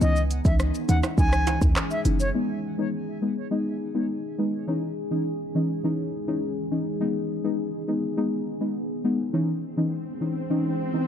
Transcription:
0.01 C#2 E3 G#3 C#4 D#4 G#4 D#5, maracas, shaker
0.16 maracas, shaker
0.30 closed hi-hat, maracas, shaker
0.45 C#2 E3 C#4 D#4 E5, kick, maracas, shaker
0.60 cross-stick, shaker, maracas
0.74 maracas, shaker
0.88 D#2 E3 C#4 D#4 F#5, closed hi-hat, maracas, shaker
1.03 cross-stick, high timbale, maracas, shaker
1.17 C#2 E3 C#4 D#4 G#5, kick, maracas, shaker
1.32 cross-stick, maracas, shaker
1.47 closed hi-hat, high timbale, shaker, maracas
1.61 D#2 E3 C#4 D#4, kick, maracas, shaker
1.76 cross-stick, clap, shaker, maracas
1.91 E5, shaker, maracas
2.05 F#1 E3 C#4 D#4, closed hi-hat, shaker, maracas
2.20 C#5, shaker, maracas
2.34 G#3 B3 D#4 G#4
2.78 G#3 B3 D#4
3.22 G#3 B3 D#4
3.51 G#3 B3 D#4
3.94 G#3 B3 D#4
4.38 G#3 B3 D#4
4.67 E3 G#3 C#4 D#4
5.11 E3 C#4 D#4
5.55 E3 C#4 D#4
5.84 E3 C#4 D#4
6.27 E3 C#4 D#4
6.71 E3 C#4 D#4
7.00 G#3 B3 D#4, swell
7.44 G#3 B3 D#4
7.88 G#3 B3 D#4
8.17 G#3 B3 D#4
8.60 G#3 B3 D#4
9.04 G#3 B3 D#4
9.33 E3 G#3 C#4 D#4
9.77 E3 C#4 D#4
10.21 E3 C#4 D#4
10.50 E3 C#4 D#4
10.93 E3 C#4 D#4

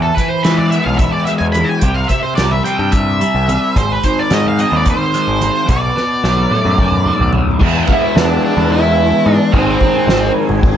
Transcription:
Already playing: E2 E3
0.02 A4
0.15 E3 B4, kick, snare, closed hi-hat
0.29 C5
0.44 E3 G#3 B4, snare, closed hi-hat
0.57 D5, low conga
0.70 B3 E5, closed hi-hat
0.85 B1 F5, high conga, low conga
0.98 E3 E5, kick, closed hi-hat
1.12 D5
1.25 G#3 E5, snare, closed hi-hat
1.39 E2 G#5
1.52 B5, closed hi-hat, low conga
1.57 E3
1.65 G#5
1.79 C2 C3 G5, kick, closed hi-hat, high conga
1.94 F5
2.08 C3 E5, kick, snare, closed hi-hat
2.23 C5
2.35 C2 G3 D5, snare, closed hi-hat
2.51 E5, low conga
2.64 C4 G5, snare, closed hi-hat
2.79 G2 G5, high conga, low conga
2.92 C3 E5, kick, closed hi-hat
3.21 G3, closed hi-hat
3.35 C2
3.48 C3, closed hi-hat, low conga
3.76 G#1 G#2 C5, kick, closed hi-hat, high conga
3.92 B4
4.03 D#3 C5, kick, closed hi-hat
4.19 D5
4.30 G#2 G#3 D#5, snare, closed hi-hat
4.45 F5, low conga
4.59 C4 D#5, closed hi-hat
4.72 D#2, high conga, low conga
4.76 D5
4.86 D#3, kick, closed hi-hat
4.90 C5
5.14 G#3, snare, closed hi-hat
5.28 G#1
5.41 D#3, closed hi-hat, low conga
5.67 B1 B2 D5, kick, closed hi-hat, high conga, low conga
5.96 B2, snare, low conga
6.23 B1 F#3, snare, low conga
6.37 low conga
6.51 A3, high tom
6.65 F#2, high conga
6.78 B2, kick, mid tom
6.92 mid tom
7.06 F#3, mid tom, low conga
7.19 B1, floor tom
7.33 B2, floor tom, low conga
7.47 floor tom
7.59 E2 E3 G#3 B3 E4 G#4 B4 E5, kick, crash, high conga, low conga
7.88 kick, ride, low conga
7.93 E4
8.02 low conga
8.16 E2 D4, snare, ride
8.43 D4, ride, low conga
8.57 E2, high conga, low conga
8.71 E4, ride
8.98 ride
9.12 low conga
9.26 G#2, ride, low conga
9.33 D4
9.52 G#1 G#2 D#3 G#3 C4 D#4 G#4 C5 D#5 G#5, kick, ride, high conga, low conga
9.81 kick, ride, low conga
9.95 low conga
10.07 G#1, snare, ride
10.35 ride, low conga
10.49 G#1, high conga, low conga
10.62 kick, ride

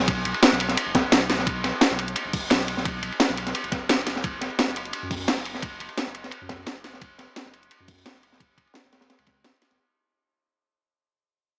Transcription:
0.00 B1
0.08 kick, closed hi-hat, ride
0.25 B1, closed hi-hat, ride
0.34 ride
0.43 snare, closed hi-hat, ride
0.52 B1, snare
0.60 closed hi-hat, ride
0.69 snare, closed hi-hat
0.77 closed hi-hat, ride
0.86 F#1
0.95 kick, snare, closed hi-hat, ride
1.12 B1, snare, closed hi-hat, ride
1.30 snare, closed hi-hat, ride
1.39 B1, snare
1.47 kick, closed hi-hat, ride
1.64 B1, snare, closed hi-hat, ride
1.81 snare, closed hi-hat, ride
1.91 B1, snare
1.99 closed hi-hat, ride
2.08 closed hi-hat
2.16 closed hi-hat, ride
2.25 F#1
2.33 kick, closed hi-hat, open hi-hat
2.50 B1, snare, closed hi-hat, ride
2.60 snare
2.68 closed hi-hat, ride
2.77 B1, snare
2.85 kick, closed hi-hat, ride
3.02 B1, closed hi-hat, ride
3.12 ride
3.20 snare, closed hi-hat, ride
3.29 B1, snare
3.37 closed hi-hat, ride
3.47 snare, closed hi-hat
3.55 closed hi-hat, ride
3.64 F#1, closed hi-hat
3.72 kick, snare, closed hi-hat, ride
3.89 F#1, snare, closed hi-hat, ride
4.06 snare, closed hi-hat, ride
4.16 F#1, snare
4.24 kick, closed hi-hat, ride
4.41 F#1, snare, closed hi-hat, ride
4.59 snare, closed hi-hat, ride
4.67 F#1, snare
4.76 closed hi-hat, ride
4.85 closed hi-hat
4.93 closed hi-hat, ride
5.03 F#2
5.11 kick, closed hi-hat, open hi-hat
5.28 F#1, snare, closed hi-hat, ride
5.37 snare
5.45 closed hi-hat, ride
5.55 F#1, snare
5.62 kick, closed hi-hat, ride
5.80 F#1, closed hi-hat, ride
5.89 ride
5.97 snare, closed hi-hat, ride
6.07 F#1, snare
6.14 closed hi-hat, ride
6.24 snare, closed hi-hat
6.31 closed hi-hat, ride
6.41 F#2
6.49 kick, snare, closed hi-hat, ride
6.66 F#1, snare, closed hi-hat, ride
6.84 snare, closed hi-hat, ride
6.93 F#1, snare
7.02 kick, closed hi-hat, ride
7.19 F#1, snare, closed hi-hat, ride
7.36 snare, closed hi-hat, ride
7.45 F#1, snare
7.54 closed hi-hat, ride
7.63 closed hi-hat
7.71 closed hi-hat, ride
7.80 F#2
7.88 kick, closed hi-hat, open hi-hat
8.05 F#1, snare, closed hi-hat, ride
8.15 snare
8.23 closed hi-hat, ride
8.32 F#1, snare
8.40 kick, closed hi-hat, ride
8.58 F#1, kick, closed hi-hat, ride
8.67 ride
8.74 snare, closed hi-hat, ride
8.84 F#1, snare
8.93 snare, closed hi-hat, ride
9.01 snare, closed hi-hat, ride
9.10 snare, closed hi-hat, ride
9.19 C#2, ride
9.26 kick, snare, closed hi-hat, ride
9.44 F#1, snare, closed hi-hat, ride
9.62 snare, closed hi-hat, ride
9.71 F#1, snare, closed hi-hat

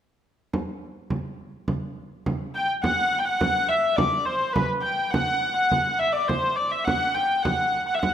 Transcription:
0.53 frame drum
1.10 frame drum
1.68 frame drum
2.26 frame drum
2.55 G5
2.83 F#5, frame drum
3.13 frame drum
3.18 G5
3.25 F#5
3.41 frame drum
3.68 E5, frame drum
3.96 D5, frame drum
4.25 C5, frame drum
4.53 B4, frame drum
4.82 G5, frame drum
5.11 F#5, frame drum
5.54 F#5
5.71 frame drum
5.99 E5, frame drum
6.12 D5
6.27 C5, frame drum
6.56 D5
6.71 E5
6.84 F#5, frame drum
7.15 G5, frame drum
7.43 F#5, frame drum
7.74 frame drum
7.86 F#5
7.94 E5
7.99 F#5, frame drum

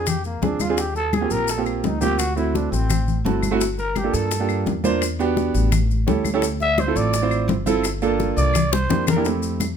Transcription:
Already playing: F2
0.06 G4, high bongo, high conga, low conga, claves, maracas
0.24 A#3, high conga, maracas
0.42 D#2 C4 D4 F4 G#4, high bongo, low bongo, high conga, maracas
0.60 F4, high bongo, high conga, claves, maracas
0.69 C4 D4 F4 G#4
0.78 G4, high bongo, high conga, maracas
0.95 A4, high bongo, high conga, maracas
1.13 G#4, high bongo, high conga, claves, maracas
1.21 A#3 C4 F4 G4
1.30 A#1 A#4, high bongo, maracas
1.48 A4, high bongo, high conga, maracas
1.58 A#3 C4 F4 G4
1.66 C4, high conga, claves, maracas
1.84 D2 D#4, high bongo, low bongo, high conga, maracas
2.01 A#3 C4 F4 G4, high bongo, high conga, maracas
2.19 F#4, high bongo, high conga, claves, maracas
2.36 A3 C4 E4 F#4, high bongo, high conga, maracas
2.55 D4, high bongo, high conga, maracas
2.71 A1 C4, high bongo, high conga, maracas
2.90 high bongo, high conga, low conga, claves, maracas
3.08 high conga, low conga, maracas
3.25 G1 A3 C4 E4 F#4 A5, high bongo, low bongo, high conga, maracas
3.43 high bongo, high conga, claves, maracas
3.51 A3 C4 E4 F#4
3.61 high bongo, high conga, maracas
3.79 A#4, high bongo, high conga, maracas
3.95 G4, high bongo, high conga, claves, maracas
4.04 A#3 D4 F4 A4
4.14 G2 A4, high bongo, maracas
4.31 high bongo, high conga, maracas
4.40 A#3 D4 F4 G4
4.49 high conga, claves, maracas
4.66 E2, high bongo, low bongo, high conga, maracas
4.84 A#3 D4 F4 C5, high bongo, high conga, maracas
5.01 high bongo, high conga, claves, maracas
5.19 B3 D4 F#4 G4, high bongo, high conga, maracas
5.37 high bongo, high conga, maracas
5.54 A1, high bongo, high conga, maracas
5.72 high bongo, high conga, low conga, claves, maracas
5.91 high conga, maracas
6.07 D2 C#4 E4 G4 A4, high bongo, low bongo, high conga, maracas
6.25 high bongo, high conga, claves, maracas
6.34 C#4 E4 G4 A4
6.42 high bongo, high conga, maracas
6.60 E5, high bongo, high conga, maracas
6.78 C5, high bongo, high conga, claves, maracas
6.87 C4 E4 F4 A4
6.96 A1 D5, high bongo, maracas
7.13 high bongo, high conga, maracas
7.22 C4 E4 F4 C5
7.31 high conga, claves, maracas
7.48 G1, high bongo, low bongo, high conga, maracas
7.66 C4 E4 F4 A4, high bongo, high conga, maracas
7.83 high bongo, high conga, claves, maracas
8.02 A#3 D4 F4 A4, high bongo, high conga, maracas
8.20 high bongo, high conga, maracas
8.37 C2 D5, high bongo, high conga, maracas
8.54 high bongo, high conga, low conga, claves, maracas
8.73 C5, high bongo, high conga, maracas
8.89 F2 A#3 D4 E4 G4, low bongo, low conga, maracas
9.07 A#4, low bongo, low conga, claves, maracas
9.16 A#3 D4 E4 G4
9.25 A3 C4 E4 G4, high bongo, high conga, maracas
9.42 high bongo, high conga, maracas
9.60 high bongo, high conga, claves, maracas

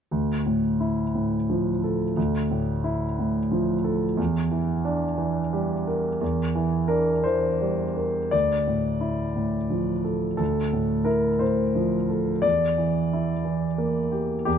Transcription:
0.11 D2
0.46 A2
0.80 E4
1.15 A2
1.50 F3
1.84 A4
2.17 D2
2.51 A2
2.84 E4
3.19 A2
3.52 F3
3.84 A4
4.17 E2
4.51 E3
4.85 D4
5.18 E3
5.53 G3
5.87 A#4
6.21 E2
6.55 E3
6.88 D4 A#4
7.24 E3 C5
7.61 G3
7.96 A#4
8.31 D2 D5
8.68 A2
9.01 E4
9.36 A2
9.70 F3
10.04 A4
10.37 D2 A4
10.73 A2
11.04 E4 A#4
11.39 A2 C5
11.75 F3
12.10 A4
12.42 E2 D5
12.78 E3
13.13 E4
13.45 E3
13.78 A#3
14.12 G4
14.45 E2 G4

